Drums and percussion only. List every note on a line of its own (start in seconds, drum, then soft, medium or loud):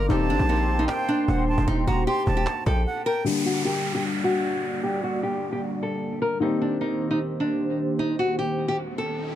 0.10 cajon bass loud
0.36 cajon bass medium
0.36 cajon slap soft
0.43 cajon slap soft
0.49 cajon slap soft
0.79 cajon slap soft
0.84 cajon slap soft
0.88 cajon slap loud
1.08 cajon slap soft
1.28 cajon bass loud
1.48 cajon slap soft
1.58 cajon bass loud
1.68 cajon bass loud
1.88 cajon bass loud
1.92 cajon slap soft
1.97 cajon slap soft
2.27 cajon bass loud
2.46 cajon slap loud
2.52 cajon slap soft
2.57 cajon slap soft
2.62 cajon slap soft
2.66 cajon bass loud